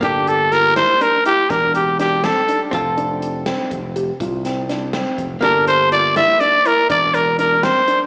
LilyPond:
<<
  \new Staff \with { instrumentName = "Trumpet" } { \time 11/8 \key g \dorian \tempo 4 = 122 g'8 a'8 bes'8 c''8 bes'8 g'8 bes'8 g'8 g'8 a'8. r16 | r1 r4. | bes'8 c''8 d''8 e''8 d''8 bes'8 d''8 bes'8 bes'8 c''8. r16 | }
  \new Staff \with { instrumentName = "Hollow-body jazz guitar" } { \time 11/8 \key g \dorian <bes g' a'>1~ <bes g' a'>4. | <c' f' a'>1~ <c' f' a'>4. | <bes g' a'>1~ <bes g' a'>4. | }
  \new Staff \with { instrumentName = "Felt piano" } { \time 11/8 \key g \dorian d'4 f'8 e'8 d'8 e'8 d'4 d'8 c'8 d'8~ | d'8 d'4 c'4 g'8 f'8 c'8 d'8 c'4 | d'4 f'8 e'8 d'8 e'8 d'4 d'8 c'8 d'8 | }
  \new Staff \with { instrumentName = "Fingered electric bass" } { \clef bass \time 11/8 \key g \dorian g,,2 r4 e,,2 r8 | f,,2 f,,4 c,2 f,,8 | g,,2 r4 e,,2 r8 | }
  \new DrumStaff \with { instrumentName = "Drums" } \drummode { \time 11/8 <hh bd>8 hh8 <hh sn>8 <hh sn>8 hh8 hh8 <hh bd sn>8 hh8 <hh sn>8 <hh sn>8 hh8 | <hh bd>8 hh8 hh8 <hh sn>8 <hh bd>8 hh8 <hh bd>8 <hh sn>8 <hh sn>8 <hh sn>8 <hh bd>8 | <hh bd>8 hh8 hh8 <hh sn>8 hh8 hh8 <hh bd>8 hh8 hh8 <hh sn>8 hh8 | }
>>